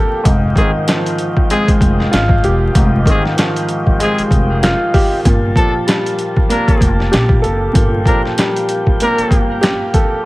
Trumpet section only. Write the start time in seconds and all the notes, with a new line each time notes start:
0.56 C4 G#4
1.50 C4 G#4
3.07 C4 G#4
4.01 C4 G#4
5.56 D4 A4
6.49 D4 A#4
8.05 D4 A#4
9.01 D4 A#4